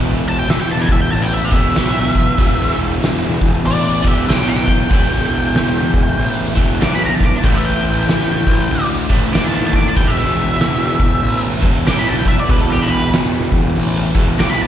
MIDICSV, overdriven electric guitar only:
0, 0, Header, 1, 2, 480
1, 0, Start_track
1, 0, Key_signature, 1, "minor"
1, 0, Tempo, 631579
1, 1810, Time_signature, 4, 2, 24, 8
1, 11149, End_track
2, 0, Start_track
2, 0, Title_t, "Overdriven electric guitar"
2, 0, Program_c, 0, 29
2, 0, Note_on_c, 0, 40, 75
2, 0, Note_on_c, 0, 47, 89
2, 0, Note_on_c, 0, 52, 83
2, 1137, Note_off_c, 0, 47, 0
2, 1147, Note_off_c, 0, 52, 0
2, 1150, Note_on_c, 0, 52, 80
2, 1162, Note_on_c, 0, 47, 73
2, 1174, Note_off_c, 0, 40, 0
2, 1177, Note_on_c, 0, 40, 59
2, 1323, Note_off_c, 0, 40, 0
2, 1324, Note_off_c, 0, 47, 0
2, 1326, Note_on_c, 0, 40, 76
2, 1341, Note_on_c, 0, 47, 77
2, 1351, Note_off_c, 0, 52, 0
2, 1354, Note_on_c, 0, 52, 80
2, 1801, Note_off_c, 0, 40, 0
2, 1804, Note_on_c, 0, 40, 88
2, 1805, Note_off_c, 0, 47, 0
2, 1820, Note_on_c, 0, 47, 88
2, 1827, Note_off_c, 0, 52, 0
2, 1830, Note_on_c, 0, 52, 91
2, 3051, Note_off_c, 0, 40, 0
2, 3059, Note_off_c, 0, 47, 0
2, 3059, Note_off_c, 0, 52, 0
2, 3062, Note_on_c, 0, 52, 83
2, 3076, Note_on_c, 0, 47, 68
2, 3086, Note_on_c, 0, 40, 67
2, 3234, Note_off_c, 0, 40, 0
2, 3241, Note_off_c, 0, 47, 0
2, 3243, Note_on_c, 0, 40, 73
2, 3258, Note_on_c, 0, 47, 77
2, 3265, Note_off_c, 0, 52, 0
2, 3268, Note_on_c, 0, 52, 84
2, 3711, Note_off_c, 0, 40, 0
2, 3720, Note_on_c, 0, 40, 84
2, 3723, Note_off_c, 0, 47, 0
2, 3737, Note_on_c, 0, 47, 77
2, 3746, Note_off_c, 0, 52, 0
2, 3749, Note_on_c, 0, 52, 97
2, 4968, Note_off_c, 0, 40, 0
2, 4977, Note_off_c, 0, 47, 0
2, 4980, Note_off_c, 0, 52, 0
2, 4983, Note_on_c, 0, 52, 80
2, 5000, Note_on_c, 0, 47, 73
2, 5011, Note_on_c, 0, 40, 70
2, 5156, Note_off_c, 0, 40, 0
2, 5163, Note_off_c, 0, 47, 0
2, 5165, Note_on_c, 0, 40, 73
2, 5182, Note_on_c, 0, 47, 78
2, 5190, Note_off_c, 0, 52, 0
2, 5194, Note_on_c, 0, 52, 81
2, 5636, Note_off_c, 0, 40, 0
2, 5642, Note_off_c, 0, 47, 0
2, 5645, Note_on_c, 0, 45, 90
2, 5662, Note_off_c, 0, 52, 0
2, 5665, Note_on_c, 0, 52, 83
2, 5676, Note_on_c, 0, 57, 88
2, 6891, Note_off_c, 0, 45, 0
2, 6898, Note_off_c, 0, 57, 0
2, 6907, Note_on_c, 0, 57, 79
2, 6919, Note_off_c, 0, 52, 0
2, 6922, Note_on_c, 0, 52, 68
2, 6934, Note_on_c, 0, 45, 64
2, 7070, Note_off_c, 0, 45, 0
2, 7076, Note_off_c, 0, 57, 0
2, 7079, Note_on_c, 0, 45, 78
2, 7095, Note_off_c, 0, 52, 0
2, 7098, Note_on_c, 0, 52, 83
2, 7108, Note_on_c, 0, 57, 81
2, 7553, Note_off_c, 0, 45, 0
2, 7564, Note_on_c, 0, 40, 83
2, 7568, Note_off_c, 0, 57, 0
2, 7578, Note_on_c, 0, 47, 95
2, 7585, Note_off_c, 0, 52, 0
2, 7588, Note_on_c, 0, 52, 89
2, 8814, Note_off_c, 0, 52, 0
2, 8817, Note_on_c, 0, 52, 86
2, 8818, Note_off_c, 0, 47, 0
2, 8832, Note_on_c, 0, 47, 75
2, 8842, Note_off_c, 0, 40, 0
2, 8845, Note_on_c, 0, 40, 67
2, 8999, Note_off_c, 0, 47, 0
2, 9001, Note_off_c, 0, 40, 0
2, 9004, Note_on_c, 0, 40, 72
2, 9020, Note_on_c, 0, 47, 77
2, 9030, Note_off_c, 0, 52, 0
2, 9033, Note_on_c, 0, 52, 83
2, 9474, Note_off_c, 0, 40, 0
2, 9477, Note_on_c, 0, 40, 79
2, 9484, Note_off_c, 0, 47, 0
2, 9492, Note_on_c, 0, 47, 95
2, 9500, Note_off_c, 0, 52, 0
2, 9503, Note_on_c, 0, 52, 91
2, 10728, Note_off_c, 0, 40, 0
2, 10736, Note_off_c, 0, 47, 0
2, 10747, Note_off_c, 0, 52, 0
2, 10750, Note_on_c, 0, 52, 74
2, 10765, Note_on_c, 0, 47, 72
2, 10778, Note_on_c, 0, 40, 63
2, 10913, Note_off_c, 0, 40, 0
2, 10922, Note_on_c, 0, 40, 77
2, 10926, Note_off_c, 0, 47, 0
2, 10938, Note_on_c, 0, 47, 84
2, 10949, Note_off_c, 0, 52, 0
2, 10952, Note_on_c, 0, 52, 80
2, 11149, Note_off_c, 0, 40, 0
2, 11149, Note_off_c, 0, 47, 0
2, 11149, Note_off_c, 0, 52, 0
2, 11149, End_track
0, 0, End_of_file